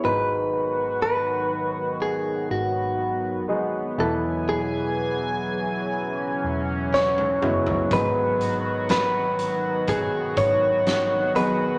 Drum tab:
HH |----------------|----------------|x-x-x-x-x-x-x-x-|
SD |----------------|------------o---|----o-------o---|
T1 |----------------|-------------o--|----------------|
T2 |----------------|--------------o-|----------------|
FT |----------------|---------------o|----------------|
BD |----------------|----------------|o-------o-o-----|